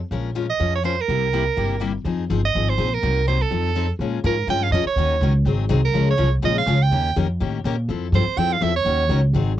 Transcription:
0.11 A#1 F3 G#3 C#4 F4 A#4
0.35 F3 G#3 C#4 F4 A#4
0.50 D#5
0.59 F2 F3 G#3 C#4 F4 A#4
0.76 C#5
0.83 F3 G#3 C#4 F4 A#4 C5
1.01 A#4
1.08 C2 C3 G3 A#3 E4 G4
1.33 C3 G3 A#3 E4 G4
1.56 G1 C3 G3 A#3 E4 G4
1.80 C3 G3 A#3 E4 G4
2.05 F2 F3 C4 D#4 G#4
2.30 G1 F3 C4 D#4 G#4
2.45 D#5
2.55 G#1 F3 C4 D#4 G#4
2.69 C5
2.78 A#1 F3 C4 D#4 G#4
2.94 A#4
3.02 C2 C3 F#3 A#3 D#4 A#4
3.27 C3 F#3 A#3 D#4 A#4 C5
3.42 A4
3.51 F2 F3 C4 D#4 A4
3.75 F3 C4 D#4 A4
3.99 A#2 F3 G#3 C#4 F4 A#4
4.24 G#2 F3 G#3 C#4 F4 A#4
4.47 G2 F3 G#3 C#4 F4 A#4 G5
4.63 F5
4.71 F2 F3 G#3 C#4 F4 A#4 D#5
4.85 C#5, muted upright bass stroke
4.96 D#2 D#3 F#3 C#4 D#4 A#4
5.21 C#2 D#3 F#3 C#4 D#4 A#4
5.45 G#1 D#3 F#3 C4 D#4 G#4
5.69 C2 D#3 F#3 C4 D#4 G#4
5.85 A#4
5.93 C#2 C#3 F3 G#3 C#4 F4 A#4
6.11 C#5
6.17 C2 C#3 F3 G#3 C#4 F4 A#4
6.42 A#1 C#3 F3 G#3 C#4 F4 A#4 D#5
6.58 F5
6.66 C#2 C#3 F3 G#3 C#4 F4 A#4
6.82 G5
6.91 D#2 D#3 A#3 C#4 G4 A#4
7.16 F2 D#3 A#3 C#4 G4 A#4
7.40 A2 D#3 A#3 C#4 G4 A#4
7.64 A#2 D#3 A#3 C#4 G4 A#4
7.89 F2 F3 C4 E4 A4
8.12 G2 F3 C4 E4 A4 C5
8.27 muted upright bass stroke
8.37 F2 F3 C4 E4 A4 G5
8.53 F5
8.61 E2 F3 C4 E4 A4 E5
8.76 C#5
8.85 D#2 D#3 F#3 C#4 D#4 A#4
9.09 C#2 D#3 F#3 C#4 D#4 A#4
9.33 G#1 D#3 F#3 C4 D#4 G#4

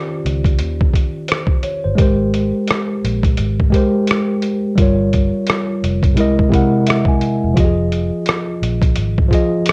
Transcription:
Already playing: D#3 C#4 F4 G4 C5
0.25 C#2, closed hi-hat
0.44 kick, closed hi-hat
0.59 D#2, closed hi-hat
0.81 kick
0.94 kick, closed hi-hat
1.28 C5, cross-stick, closed hi-hat
1.47 kick
1.63 C#5, closed hi-hat
1.84 G1 C5
1.95 G#1 G#3 G4 A#4, kick, closed hi-hat
2.02 C5
2.34 closed hi-hat
2.68 cross-stick, closed hi-hat
3.04 A#1, closed hi-hat
3.23 kick, closed hi-hat
3.37 G#1, closed hi-hat
3.60 kick
3.70 G#3 G4 A#4, kick, closed hi-hat
3.76 C5
4.07 cross-stick, closed hi-hat
4.42 closed hi-hat
4.75 G1 G3 F4 A#4, kick, closed hi-hat
4.82 C#5
5.13 kick, closed hi-hat
5.47 cross-stick, closed hi-hat
5.84 F1, closed hi-hat
6.03 kick, closed hi-hat
6.14 C2 C3 G#3 E4, closed hi-hat
6.19 A#4 D#5
6.39 kick
6.49 C3 G#3 E4, kick
6.54 A#4 F#5, closed hi-hat
6.87 E5, cross-stick, closed hi-hat
7.05 G#5, kick
7.21 closed hi-hat
7.44 E1
7.54 F1 F3 F4, kick, closed hi-hat
7.58 G4 D#5
7.65 G#4
7.92 closed hi-hat
8.26 cross-stick, closed hi-hat
8.62 A#1, closed hi-hat
8.82 kick, closed hi-hat
8.96 G#1, closed hi-hat
9.18 kick
9.28 F3 F4 G#4, kick
9.33 D#5, closed hi-hat
9.66 cross-stick, closed hi-hat

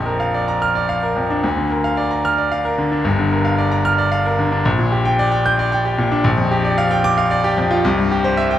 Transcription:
Already playing: A#1 F2
0.06 A#4
0.20 F5
0.34 D5
0.48 A#5
0.62 F6
0.75 D5
0.89 F5
1.03 A#4
1.16 F2
1.30 D4
1.44 D2
1.57 D3
1.70 A#4
1.84 F5
1.97 D5
2.11 A#5
2.25 F6
2.38 D5
2.52 F5
2.65 A#4
2.78 D3
2.92 D4
3.04 G1 G2
3.19 D3
3.32 A#4
3.45 F5
3.58 D5
3.72 A#5
3.85 F6
3.98 D5
4.12 F5
4.25 A#4
4.39 D3
4.52 D4
4.65 A#1
4.79 A#2
4.92 G4
5.05 G5
5.19 D5
5.32 G5
5.46 G6
5.59 D5
5.72 G5
5.85 G4
5.98 A#2
6.12 D4
6.24 A#1
6.38 F2
6.51 G4
6.64 D5
6.78 F5
6.91 G5
7.04 D6
7.18 F5
7.31 D5
7.44 G4
7.58 F2
7.71 F4
7.85 C2
7.98 G2
8.11 G4
8.24 C5
8.37 E5
8.51 G5

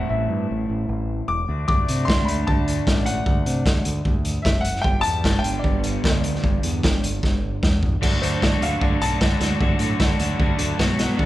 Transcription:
Already playing: A2 E3 G3 A3 C4 E4 G4
0.09 A1 E5
0.30 G2
0.51 A1
0.70 A1
0.89 A1
1.28 E1 D6
1.47 D2 D3 A3 D4 F#4
1.68 D2 D6, kick
1.88 C3, closed hi-hat
2.05 D2 C6, kick
2.10 snare
2.25 D2 B5, closed hi-hat
2.47 D2 A5, kick
2.68 closed hi-hat
2.87 A1, kick, snare
3.06 F#5, closed hi-hat
3.26 D2, kick
3.46 C3, closed hi-hat
3.65 D2, kick, snare
3.85 D2, closed hi-hat
4.05 D2, kick
4.25 closed hi-hat
4.42 F#1 E5, kick, snare
4.61 F#5, closed hi-hat
4.76 snare
4.82 G1 G2 D3 G3 B3 D4 G4 G5, kick
5.01 A5, closed hi-hat
5.06 E2
5.24 G1, kick, snare
5.39 G5
5.44 G1, closed hi-hat
5.59 D5
5.64 G1, kick
5.84 closed hi-hat
6.04 D2, kick, snare
6.24 closed hi-hat
6.35 snare
6.44 G1, kick
6.63 E2, closed hi-hat
6.83 G1, kick, snare
7.03 G1, closed hi-hat
7.23 G1, kick, snare
7.63 E2, kick, snare
7.83 kick
8.02 D2 D3 F#3 A3 D4 F#4 A4, kick, crash
8.21 D2 D3 F#3 A3 D4 F#4 A4 C5, closed hi-hat
8.40 D2 D3 F#3 A3 D4 F#4 A4 D5, kick, snare
8.61 D2 D3 F#3 A3 D4 F#4 A4 F5, closed hi-hat
8.81 D2 D3 F#3 A3 D4 F#4 A4, kick
9.01 B1 D3 F#3 A3 D4 F#4 A4 A5, closed hi-hat
9.21 D2 D3 F#3 A3 D4 F#4 A4, kick, snare
9.39 D2 D3 F#3 A3 D4 F#4 A4, snare, closed hi-hat
9.60 D2 D3 F#3 A3 D4 F#4 A4, kick
9.79 A2 D3 F#3 A3 D4 F#4 A4, closed hi-hat
9.99 D2 D3 F#3 A3 D4 F#4 A4, kick, snare
10.19 D2 D3 F#3 A3 D4 F#4 A4, closed hi-hat
10.38 D2 D3 F#3 A3 D4 F#4 A4, kick
10.57 D2 D3 F#3 A3 D4 F#4 A4, closed hi-hat
10.77 B1 B2 F#3 B3 F#4, kick, snare
10.99 B2 F#3 B3 F#4, snare, closed hi-hat
11.17 D2 D3 D4 F#4 A4, kick

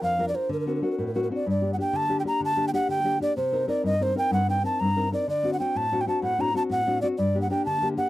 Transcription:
Already playing: D4 F4 A#4
0.02 F2 F5
0.18 D4 F4 A#4
0.28 D5
0.34 D4 F4 A#4 C5
0.49 D3 A#4
0.60 A#4
0.66 C4 D4 F#4 A#4
0.76 A#4
0.81 C4 D4 F#4 A#4
0.91 A#4
0.98 A2 A#4
1.07 A#4
1.15 C4 D4 F#4 A#4
1.23 A#4
1.30 C4 D4 F#4
1.35 D5
1.46 G2 D5
1.61 A#3 D4 G4
1.73 F#5
1.78 A#3 D4 G4 G5
1.93 D3 A5
2.09 A#3 D4 G4
2.20 G5
2.24 A#3 D4 G4 A#5
2.40 D3
2.45 A5
2.56 A#3 D4 G4
2.68 G5
2.73 A#3 D4 G4 F#5
2.89 D3 G5
3.04 A#3 D4 G4
3.20 A#3 D4 G4 D5
3.37 C3 C5
3.52 C4 D#4 A#4
3.67 C4 D#4 A#4 D5
3.83 G2 D#5
4.00 C4 D#4 A#4 C5
4.15 C4 D#4 A#4 G5
4.31 G2 F#5
4.48 C4 D#4 A#4 G5
4.63 C4 D#4 A#4 A5
4.80 G2 A#5
4.96 C4 D#4 A#4
5.12 C4 D#4 A#4 D5
5.28 D3 D5
5.43 C4 D4 F#4
5.53 F#5
5.59 C4 D4 F#4 G5
5.75 A2 A5
5.92 C4 D4 F#4
6.01 G5
6.06 C4 D4 F#4 A5
6.22 A2 F#5
6.38 C4 D4 F#4 A#5
6.54 C4 D4 F#4 A5
6.69 A2 F#5
6.86 C4 D4 F#4
7.01 C4 D4 F#4 D5
7.18 G2 D5
7.34 A#3 D4 G4
7.42 F#5
7.50 A#3 D4 G4 G5
7.66 D3 A5
7.82 A#3 D4 G4
7.97 A#3 D4 G4 F#5

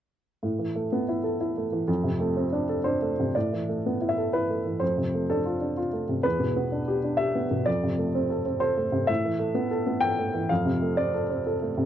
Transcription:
0.43 A2
0.59 E3
0.75 A3
0.92 B3
1.09 E4
1.24 A4
1.41 E4
1.57 A3
1.72 E3
1.88 F2
2.04 C3
2.20 A3
2.37 C4
2.52 D4
2.69 A4
2.84 D4 C5
3.02 A3
3.20 C3
3.35 A2 D5
3.52 E3
3.69 A3
3.86 B3
4.01 E4
4.09 E5
4.18 A4
4.33 E4 B4
4.50 A3
4.65 E3
4.80 F2 C5
4.98 C3
5.14 A3
5.30 D4 A4
5.45 F4
5.61 D4
5.77 F4
5.93 A3
6.09 C3
6.23 E2 B4
6.40 B2
6.56 B3
6.72 D4
6.88 G4
7.04 D4
7.17 G4 E5
7.35 B3
7.51 B2
7.66 F2 D5
7.83 C3
7.98 A3
8.15 C4
8.30 A4
8.46 C4
8.60 A4 C5
8.77 A3
8.92 C3
9.07 A2 E5
9.24 E3
9.39 A3
9.55 B3
9.71 A4
9.86 B3
10.01 A4 G5
10.19 A3
10.34 E3
10.49 F2 F5
10.65 C3
10.82 A3
10.97 C4 D5
11.14 A4
11.30 C4
11.47 A4
11.62 A3
11.78 C3

